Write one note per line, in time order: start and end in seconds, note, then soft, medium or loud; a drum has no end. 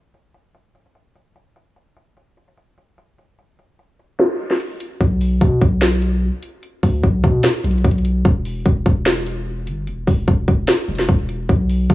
0.14 closed hi-hat medium
0.34 closed hi-hat medium
0.55 closed hi-hat medium
0.75 closed hi-hat medium
0.86 closed hi-hat soft
0.95 closed hi-hat medium
1.16 closed hi-hat medium
1.36 closed hi-hat medium
1.56 closed hi-hat medium
1.76 closed hi-hat medium
1.97 closed hi-hat medium
2.17 closed hi-hat medium
2.37 closed hi-hat medium
2.48 closed hi-hat soft
2.57 closed hi-hat medium
2.78 closed hi-hat medium
2.98 closed hi-hat medium
3.18 closed hi-hat medium
3.39 closed hi-hat medium
3.59 closed hi-hat medium
3.79 closed hi-hat medium
3.99 closed hi-hat medium
4.20 snare loud
4.20 closed hi-hat medium
4.40 closed hi-hat soft
4.51 snare medium
4.51 closed hi-hat medium
4.60 closed hi-hat medium
4.80 closed hi-hat medium
5.01 5.40 B1 loud
5.01 kick loud
5.01 closed hi-hat medium
5.21 open hi-hat medium
5.41 5.61 B2 loud
5.41 kick loud
5.41 closed hi-hat medium
5.61 6.30 B1 loud
5.61 kick loud
5.61 closed hi-hat medium
5.82 snare loud
5.82 closed hi-hat medium
6.02 closed hi-hat medium
6.43 closed hi-hat medium
6.63 closed hi-hat medium
6.83 7.03 D2 loud
6.83 kick medium
6.83 open hi-hat medium
7.03 7.23 B1 loud
7.03 kick loud
7.03 closed hi-hat medium
7.24 7.43 B2 loud
7.24 kick loud
7.24 closed hi-hat medium
7.44 snare loud
7.44 closed hi-hat medium
7.64 7.84 B1 loud
7.64 closed hi-hat medium
7.71 closed hi-hat medium
7.78 closed hi-hat soft
7.84 8.23 B1 loud
7.84 kick loud
7.84 closed hi-hat medium
7.91 closed hi-hat medium
7.98 closed hi-hat soft
8.05 closed hi-hat medium
8.25 8.64 E1 loud
8.25 kick loud
8.25 closed hi-hat medium
8.45 open hi-hat medium
8.66 8.85 E1 loud
8.66 kick loud
8.66 closed hi-hat medium
8.86 9.68 E1 loud
8.86 kick loud
8.86 closed hi-hat medium
9.06 snare loud
9.06 closed hi-hat medium
9.26 closed hi-hat medium
9.67 9.89 G1 loud
9.67 closed hi-hat medium
9.87 10.06 E1 loud
9.87 closed hi-hat medium
10.07 10.27 E1 loud
10.07 kick medium
10.07 open hi-hat medium
10.28 10.47 E1 loud
10.28 kick loud
10.28 closed hi-hat medium
10.48 10.67 E1 loud
10.48 kick loud
10.48 closed hi-hat medium
10.68 snare loud
10.68 closed hi-hat medium
10.88 11.08 E1 loud
10.88 closed hi-hat soft
10.95 snare medium
10.95 closed hi-hat medium
11.02 closed hi-hat medium
11.09 11.48 E1 loud
11.09 kick loud
11.09 closed hi-hat medium
11.29 closed hi-hat medium
11.49 11.88 B1 loud
11.49 kick loud
11.49 closed hi-hat medium
11.69 open hi-hat medium
11.90 11.94 B2 loud
11.90 kick loud
11.90 closed hi-hat medium